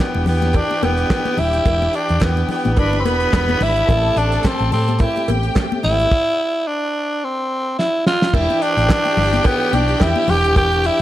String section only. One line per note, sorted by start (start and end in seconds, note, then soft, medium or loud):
0.00 2.74 G4 medium
0.00 2.74 G5 medium
2.77 3.86 B4 medium
2.77 3.86 B5 medium
3.88 4.98 A4 medium
3.88 4.98 A5 medium
5.01 6.10 G4 medium
5.01 6.10 G5 medium
8.33 11.02 G4 loud
8.33 11.02 G5 loud